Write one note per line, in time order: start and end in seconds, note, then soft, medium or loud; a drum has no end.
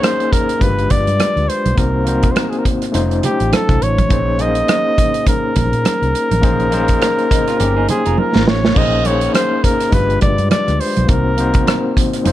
0.00 0.63 A#3 medium
0.00 0.64 C#4 medium
0.00 0.63 D#4 medium
0.00 0.64 G#4 medium
0.00 0.63 C5 medium
0.00 0.34 C5 medium
0.00 closed hi-hat medium
0.00 high conga soft
0.04 cross-stick medium
0.20 closed hi-hat soft
0.32 0.63 A#4 medium
0.32 kick medium
0.32 closed hi-hat medium
0.49 closed hi-hat soft
0.59 0.87 G1 medium
0.59 1.70 G#3 medium
0.59 1.71 D4 medium
0.59 1.71 F4 medium
0.59 1.72 G4 medium
0.59 0.70 A#4 medium
0.59 0.92 B4 medium
0.59 kick medium
0.59 closed hi-hat medium
0.59 muted conga soft
0.70 1.75 B4 medium
0.79 closed hi-hat soft
0.90 1.06 G1 medium
0.90 1.50 D5 loud
0.90 kick medium
0.90 closed hi-hat medium
0.90 muted conga soft
0.90 low conga medium
1.07 1.18 G2 medium
1.07 closed hi-hat soft
1.20 muted fingered electric bass stroke soft
1.20 cross-stick medium
1.20 closed hi-hat medium
1.20 high conga medium
1.36 1.47 D2 medium
1.36 closed hi-hat soft
1.36 high conga soft
1.49 1.79 C5 medium
1.49 closed hi-hat medium
1.66 1.76 B1 medium
1.66 closed hi-hat soft
1.66 high conga medium
1.75 2.29 C2 medium
1.75 2.03 A#3 medium
1.75 2.04 C4 medium
1.75 2.05 D#4 medium
1.75 2.05 F#4 medium
1.75 2.33 A#4 medium
1.75 2.06 C5 medium
1.75 kick loud
1.75 closed hi-hat medium
2.04 2.93 A#3 medium
2.04 2.94 C4 medium
2.04 2.92 D#4 medium
2.04 2.95 F#4 medium
2.04 2.94 C5 medium
2.04 closed hi-hat medium
2.04 muted conga soft
2.23 kick medium
2.23 closed hi-hat medium
2.31 2.40 C5 medium
2.36 2.51 A#4 medium
2.36 cross-stick loud
2.36 closed hi-hat medium
2.36 high conga soft
2.49 2.60 G#4 medium
2.49 closed hi-hat soft
2.59 2.66 A#4 medium
2.65 kick medium
2.65 closed hi-hat medium
2.82 cross-stick soft
2.82 closed hi-hat soft
2.92 3.20 F1 medium
2.92 4.03 A3 medium
2.92 4.03 C#4 medium
2.92 4.04 D#4 medium
2.92 4.04 F4 medium
2.92 4.04 C5 medium
2.92 closed hi-hat medium
2.92 muted conga soft
3.11 closed hi-hat soft
3.23 3.55 G4 medium
3.23 closed hi-hat medium
3.23 muted conga soft
3.23 low conga medium
3.40 3.51 A1 medium
3.40 closed hi-hat soft
3.53 3.84 A4 medium
3.53 cross-stick medium
3.53 closed hi-hat medium
3.53 high conga medium
3.69 3.80 C2 medium
3.69 kick medium
3.69 cross-stick soft
3.69 closed hi-hat soft
3.69 high conga soft
3.82 4.07 A1 medium
3.82 4.43 C#5 medium
3.82 closed hi-hat medium
3.98 kick medium
3.98 closed hi-hat soft
3.98 high conga medium
4.09 4.61 A#1 medium
4.09 4.37 A#3 medium
4.09 4.37 C#4 medium
4.09 4.38 D#4 medium
4.09 4.38 G#4 medium
4.09 4.39 C5 medium
4.09 kick medium
4.09 closed hi-hat medium
4.38 5.49 A#3 medium
4.38 5.49 C#4 medium
4.38 5.49 D#4 medium
4.38 5.50 G#4 medium
4.38 5.50 C5 medium
4.38 5.28 D#5 loud
4.38 closed hi-hat medium
4.38 muted conga soft
4.55 closed hi-hat soft
4.68 cross-stick loud
4.68 closed hi-hat medium
4.68 high conga soft
4.98 kick medium
4.98 closed hi-hat medium
5.14 closed hi-hat soft
5.27 7.86 A#4 medium
5.27 kick medium
5.27 closed hi-hat medium
5.27 muted conga soft
5.56 5.71 A#1 medium
5.56 kick medium
5.56 closed hi-hat medium
5.56 muted conga soft
5.56 low conga medium
5.73 5.84 A#2 medium
5.73 closed hi-hat soft
5.85 muted fingered electric bass stroke soft
5.85 cross-stick medium
5.85 closed hi-hat medium
5.85 high conga medium
6.02 6.13 C2 medium
6.02 closed hi-hat soft
6.02 high conga soft
6.15 closed hi-hat medium
6.31 6.43 A1 medium
6.31 closed hi-hat medium
6.31 high conga medium
6.41 6.94 A#1 medium
6.41 6.69 A#3 medium
6.41 6.70 C#4 medium
6.41 6.71 D#4 medium
6.41 6.71 G#4 medium
6.41 6.71 C5 medium
6.41 kick loud
6.41 closed hi-hat medium
6.41 muted conga soft
6.60 closed hi-hat soft
6.70 7.81 A#3 medium
6.70 7.82 C#4 medium
6.70 7.82 D#4 medium
6.70 7.82 G#4 medium
6.70 7.83 C5 medium
6.70 closed hi-hat medium
6.70 muted conga soft
6.88 kick medium
6.88 closed hi-hat medium
7.02 cross-stick loud
7.02 closed hi-hat medium
7.02 high conga medium
7.19 closed hi-hat soft
7.31 7.47 A#3 soft
7.31 7.47 D#4 medium
7.31 kick medium
7.31 closed hi-hat medium
7.48 7.60 C4 medium
7.48 7.59 F4 medium
7.48 cross-stick soft
7.48 closed hi-hat soft
7.60 7.86 G1 medium
7.60 7.76 C#4 medium
7.60 7.76 G4 medium
7.60 closed hi-hat medium
7.60 muted conga soft
7.77 7.89 D#4 medium
7.77 7.88 G#4 medium
7.88 8.06 G4 soft
7.88 8.21 G#4 medium
7.88 8.06 C5 soft
7.88 closed hi-hat medium
7.88 muted conga soft
7.88 low conga medium
8.06 8.17 F1 medium
8.06 8.73 F4 soft
8.06 8.73 A#4 medium
8.06 closed hi-hat soft
8.18 8.49 A#4 medium
8.18 high conga medium
8.35 8.46 G#1 medium
8.35 snare medium
8.35 high conga soft
8.47 8.73 A1 medium
8.47 8.79 C#5 medium
8.47 snare medium
8.64 snare medium
8.64 high conga medium
8.75 9.27 A#1 medium
8.75 9.02 A#3 medium
8.75 9.03 C#4 medium
8.75 9.04 D#4 medium
8.75 9.04 G#4 medium
8.75 9.05 C5 medium
8.75 9.08 D#5 medium
8.75 kick loud
8.75 crash medium
9.03 9.92 A#3 medium
9.03 9.92 C#4 medium
9.03 9.93 D#4 medium
9.03 9.93 G#4 medium
9.03 9.94 C5 medium
9.03 9.35 C#5 medium
9.03 closed hi-hat medium
9.03 muted conga soft
9.21 closed hi-hat medium
9.34 9.66 C5 medium
9.34 cross-stick loud
9.34 closed hi-hat medium
9.34 high conga medium
9.64 9.95 A#4 medium
9.64 kick medium
9.64 closed hi-hat medium
9.80 cross-stick soft
9.80 closed hi-hat medium
9.91 10.18 G1 medium
9.91 11.01 G#3 medium
9.91 11.02 D4 medium
9.91 11.02 F4 medium
9.91 11.03 G4 medium
9.91 10.22 B4 medium
9.91 11.03 B4 medium
9.91 kick medium
9.91 closed hi-hat medium
9.91 muted conga soft
10.10 closed hi-hat soft
10.21 10.37 G1 medium
10.21 10.49 D5 medium
10.21 kick medium
10.21 closed hi-hat medium
10.21 muted conga soft
10.21 low conga medium
10.38 10.49 G2 loud
10.38 closed hi-hat soft
10.51 10.82 D5 loud
10.51 cross-stick medium
10.51 closed hi-hat medium
10.51 high conga medium
10.68 10.79 D2 medium
10.68 cross-stick soft
10.68 closed hi-hat soft
10.68 high conga soft
10.80 11.11 C5 medium
10.80 open hi-hat medium
10.97 11.08 B1 medium
10.97 closed hi-hat soft
10.97 high conga medium
11.07 11.60 C2 medium
11.07 11.35 A#3 medium
11.07 11.36 C4 medium
11.07 11.37 D#4 medium
11.07 11.37 F#4 medium
11.07 11.96 A#4 medium
11.07 11.37 C5 medium
11.07 kick loud
11.07 closed hi-hat medium
11.37 12.25 A#3 medium
11.37 12.25 C4 medium
11.37 12.24 D#4 medium
11.37 12.26 F#4 medium
11.37 12.26 C5 medium
11.37 closed hi-hat medium
11.37 muted conga soft
11.54 kick medium
11.54 closed hi-hat medium
11.67 cross-stick loud
11.67 closed hi-hat medium
11.67 high conga medium
11.97 kick medium
11.97 closed hi-hat medium
12.13 cross-stick soft
12.13 closed hi-hat medium
12.24 12.32 F1 medium
12.24 12.32 G3 medium
12.24 12.32 C#4 medium
12.24 12.32 D#4 medium
12.24 12.32 F4 medium
12.24 12.32 C5 medium
12.24 closed hi-hat medium
12.24 muted conga soft